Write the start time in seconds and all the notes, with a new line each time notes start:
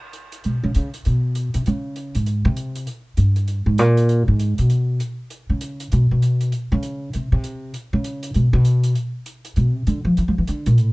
0.13 closed hi-hat
0.32 closed hi-hat
0.44 B2, closed hi-hat
0.63 C#3
0.75 C#3, closed hi-hat
0.94 closed hi-hat
1.05 B2, closed hi-hat
1.35 closed hi-hat
1.54 C3, closed hi-hat
1.66 C#3, closed hi-hat
1.96 closed hi-hat
2.15 G#2, closed hi-hat
2.26 closed hi-hat
2.45 C3
2.57 closed hi-hat
2.75 closed hi-hat
2.87 closed hi-hat
3.17 G2, closed hi-hat
3.36 closed hi-hat
3.48 closed hi-hat
3.66 G#2
3.78 A#2, closed hi-hat
3.97 closed hi-hat
4.09 closed hi-hat
4.28 G#2
4.39 closed hi-hat
4.58 B2, closed hi-hat
4.70 closed hi-hat
5.00 closed hi-hat
5.30 closed hi-hat
5.50 C#3
5.61 closed hi-hat
5.80 closed hi-hat
5.92 B2, closed hi-hat
6.11 B2
6.22 closed hi-hat
6.41 closed hi-hat
6.52 closed hi-hat
6.72 C#3
6.83 closed hi-hat
7.13 C3, closed hi-hat
7.32 C3
7.44 closed hi-hat
7.74 closed hi-hat
7.93 C#3
8.04 closed hi-hat
8.23 closed hi-hat
8.34 B2, closed hi-hat
8.53 B2
8.65 closed hi-hat
8.83 closed hi-hat
8.95 closed hi-hat
9.26 closed hi-hat
9.45 closed hi-hat
9.56 B2, closed hi-hat
9.75 C3
9.87 D3, closed hi-hat
10.05 F3
10.17 E3, closed hi-hat
10.28 F3
10.38 E3
10.47 D3, closed hi-hat
10.66 A#2, closed hi-hat
10.78 A2, closed hi-hat